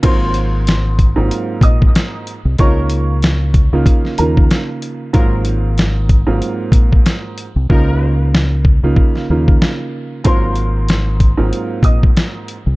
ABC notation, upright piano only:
X:1
M:4/4
L:1/16
Q:"Swing 16ths" 1/4=94
K:Abmix
V:1 name="Upright piano"
[cc']8 z2 [ee'] z4 z | [dd']8 z2 [Bb] z4 z | z16 | z16 |
[cc']8 z2 [ee'] z4 z |]